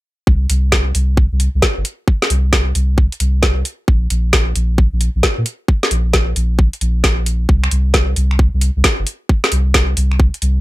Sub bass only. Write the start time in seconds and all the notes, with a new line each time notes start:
0.27 C2
0.50 C2
0.95 C2
1.32 C2
1.55 C2
1.77 G1
2.30 C2
2.75 C2
3.20 C2
3.88 A#1
4.10 A#1
4.56 A#1
4.93 A#1
5.15 A#1
5.38 A#2
5.91 A#1
6.36 A#1
6.81 A#1
7.49 C2
7.71 C2
8.17 C2
8.54 C2
8.76 C2
8.99 G1
9.52 C2
9.97 C2
10.42 C2